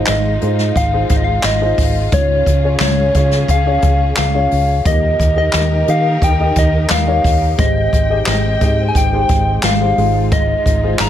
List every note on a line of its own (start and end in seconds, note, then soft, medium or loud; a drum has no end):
0.00 2.13 G#2 medium
0.00 2.10 G#3 medium
0.00 2.15 G#3 medium
0.00 0.41 D#4 medium
0.00 2.10 D#4 medium
0.00 0.41 F4 medium
0.00 4.82 F4 medium
0.00 0.42 G#4 medium
0.00 0.43 C5 medium
0.06 0.36 G#1 loud
0.06 0.79 D#5 medium
0.06 snare loud
0.06 clap medium
0.06 closed hi-hat medium
0.41 0.70 G#2 loud
0.41 0.86 D#4 medium
0.41 0.86 F4 medium
0.41 0.86 G#4 medium
0.41 0.86 C5 medium
0.41 closed hi-hat medium
0.59 snare soft
0.75 1.04 G#1 loud
0.75 1.10 F5 medium
0.75 kick medium
0.75 closed hi-hat medium
0.93 1.52 D#4 medium
0.93 1.52 F4 medium
0.93 1.52 G#4 medium
0.93 1.52 C5 medium
1.09 1.38 G#1 medium
1.09 1.18 F5 medium
1.09 kick medium
1.09 closed hi-hat medium
1.17 1.26 D#5 medium
1.24 1.44 F5 medium
1.43 1.72 G#1 medium
1.43 2.09 D#5 loud
1.43 snare loud
1.43 clap medium
1.43 closed hi-hat medium
1.61 2.05 D#4 medium
1.61 2.05 F4 medium
1.61 2.06 G#4 medium
1.61 2.06 C5 medium
1.78 2.06 G#1 medium
1.78 kick medium
1.78 open hi-hat medium
2.12 2.41 C#2 loud
2.12 3.11 G#2 medium
2.12 4.83 C#3 medium
2.12 2.56 C#4 medium
2.12 4.83 C#4 medium
2.12 2.56 F4 medium
2.12 4.83 G#4 medium
2.12 2.57 G#4 medium
2.12 2.57 C#5 medium
2.12 2.77 C#5 medium
2.12 kick loud
2.12 closed hi-hat medium
2.46 2.75 C#2 medium
2.46 kick medium
2.46 closed hi-hat medium
2.63 3.08 C#4 medium
2.63 3.08 F4 medium
2.63 3.08 G#4 medium
2.63 3.09 C#5 medium
2.79 3.09 C#2 loud
2.79 3.52 C#5 medium
2.79 snare loud
2.79 clap medium
2.79 closed hi-hat medium
3.14 3.43 C#3 loud
3.14 3.59 C#4 medium
3.14 3.59 F4 medium
3.14 3.60 G#4 medium
3.14 3.60 C#5 medium
3.14 kick medium
3.14 closed hi-hat medium
3.31 snare soft
3.48 3.77 C#2 medium
3.48 4.17 F5 loud
3.48 kick medium
3.48 closed hi-hat medium
3.66 4.25 C#4 medium
3.66 4.25 F4 medium
3.66 4.25 G#4 medium
3.66 4.26 C#5 medium
3.82 4.11 C#2 medium
3.82 kick loud
3.82 closed hi-hat medium
4.16 4.46 C#2 loud
4.16 4.88 F5 medium
4.16 snare loud
4.16 clap medium
4.16 closed hi-hat medium
4.34 4.78 C#4 medium
4.34 4.78 F4 medium
4.34 4.79 G#4 medium
4.34 4.79 C#5 medium
4.51 4.80 C#2 loud
4.51 open hi-hat medium
4.85 5.14 D#2 loud
4.85 5.84 A#2 medium
4.85 7.56 D#3 medium
4.85 5.30 D#4 medium
4.85 7.56 D#4 medium
4.85 7.56 G4 medium
4.85 5.30 G4 medium
4.85 7.56 A#4 medium
4.85 5.30 A#4 medium
4.85 5.30 D#5 medium
4.85 5.37 D#5 loud
4.85 kick loud
4.85 closed hi-hat medium
5.19 5.48 D#2 loud
5.19 kick medium
5.19 closed hi-hat medium
5.36 5.80 D#4 medium
5.36 5.81 G4 medium
5.36 5.81 A#4 medium
5.36 5.81 D#5 medium
5.36 5.91 D#5 loud
5.53 5.82 D#2 loud
5.53 snare loud
5.53 clap medium
5.53 closed hi-hat medium
5.87 6.16 D#3 loud
5.87 6.32 D#4 medium
5.87 6.32 G4 medium
5.87 6.32 A#4 medium
5.87 6.33 D#5 medium
5.87 6.25 F5 medium
5.87 closed hi-hat medium
6.22 6.50 D#2 medium
6.22 6.60 G5 loud
6.22 kick medium
6.22 closed hi-hat medium
6.39 6.98 D#4 medium
6.39 6.98 G4 medium
6.39 6.99 A#4 medium
6.39 6.99 D#5 medium
6.56 6.84 D#2 medium
6.56 6.90 D#5 medium
6.56 kick medium
6.56 closed hi-hat medium
6.89 7.18 D#2 medium
6.89 7.62 F5 loud
6.89 snare loud
6.89 clap medium
6.89 closed hi-hat medium
7.07 7.51 D#4 medium
7.07 7.51 G4 medium
7.07 7.52 A#4 medium
7.07 7.52 C#5 medium
7.24 7.53 D#2 medium
7.24 kick medium
7.24 open hi-hat medium
7.57 7.87 G#1 loud
7.57 8.57 G#2 medium
7.57 8.57 D#3 medium
7.57 11.09 G#3 medium
7.57 9.95 C4 medium
7.57 8.02 D#4 medium
7.57 8.02 G4 medium
7.57 8.03 G#4 medium
7.57 8.03 C5 medium
7.57 8.28 D#5 loud
7.57 9.95 G5 medium
7.57 kick loud
7.57 closed hi-hat medium
7.93 8.21 G#1 medium
7.93 kick medium
7.93 closed hi-hat medium
8.09 8.54 D#4 medium
8.09 8.54 G4 medium
8.09 8.54 G#4 medium
8.09 8.54 D#5 medium
8.26 8.55 G#1 loud
8.26 8.85 D#5 loud
8.26 snare loud
8.26 clap medium
8.26 closed hi-hat medium
8.61 8.89 G#2 medium
8.61 9.05 D#4 medium
8.61 9.05 G4 medium
8.61 9.05 G#4 medium
8.61 9.06 D#5 medium
8.61 kick medium
8.61 closed hi-hat medium
8.89 8.99 G#5 medium
8.95 9.23 G#1 medium
8.95 9.66 G5 loud
8.95 kick medium
8.95 closed hi-hat medium
9.12 9.71 D#4 medium
9.12 9.71 G4 medium
9.12 9.72 G#4 medium
9.12 9.72 C5 medium
9.29 9.57 G#1 loud
9.29 kick medium
9.29 closed hi-hat medium
9.63 9.91 G#1 medium
9.63 10.34 F5 loud
9.63 snare loud
9.63 clap medium
9.63 closed hi-hat medium
9.80 9.96 D#4 medium
9.80 9.98 G4 medium
9.80 9.97 G#4 medium
9.80 9.97 C5 medium
9.97 10.54 G#1 loud
9.97 10.96 G#2 medium
9.97 10.96 G#3 medium
9.97 10.71 D#4 medium
9.97 11.09 D#4 medium
9.97 11.09 F4 medium
9.97 10.71 F4 medium
9.97 10.71 G#4 medium
9.97 10.71 C5 medium
9.97 open hi-hat medium
10.32 11.03 D#5 loud
10.32 kick loud
10.32 closed hi-hat medium
10.66 10.94 G#1 medium
10.66 kick medium
10.66 closed hi-hat medium
10.83 11.09 D#4 medium
10.83 11.09 F4 medium
10.83 11.09 G#4 medium
10.83 11.09 C5 medium
10.99 11.09 G#1 loud
10.99 11.09 A#5 loud
10.99 snare loud
10.99 clap medium
10.99 closed hi-hat medium